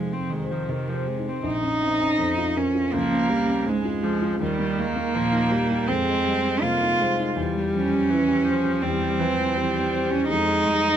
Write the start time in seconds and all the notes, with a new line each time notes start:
Already playing: F2 C3 F3 G#3 C4 D#4 G#4 A#4 C5
0.13 C4
0.18 C4
0.30 D#3 G#3
0.43 C5
0.51 F3
0.69 C3 D#3 A#4
0.89 F3
0.94 C5
1.07 G#3
1.19 D#4
1.28 C4
1.43 A#1 D#4
1.63 C#4
1.82 C4
2.00 C#4
2.19 F2
2.38 F4
2.57 C#4 A#4
2.75 F4
2.93 C#2 F3 A#3
3.11 C#4
3.30 G3 C4
3.47 C#4
3.66 G#2 G#3
3.85 F4
4.03 F3 G#4
4.22 F4
4.40 D#2 D#3 G3
4.59 A#3
4.78 G#3 A#3
4.96 A#3
5.14 A#2 F3
5.33 D#4
5.51 G3 G4
5.70 D#4
5.88 F2 G#3 C4
6.05 G#3
6.25 G3
6.44 G#3
6.61 C3 A#3 F4
6.82 D#4
7.00 G#3 C5
7.19 D#4
7.36 E2 G3
7.55 G3
7.73 F3 C#4
7.92 G3
8.10 E3
8.28 G4
8.45 F3 C5
8.64 G4
8.82 E2 G3 C4
9.01 G3
9.19 E3 F3
9.38 G3
9.56 E3 G3
9.74 G4
9.93 C5
10.10 C#4 G4
10.28 F2 G#3 D#4
10.48 G#3
10.64 G3
10.84 G#3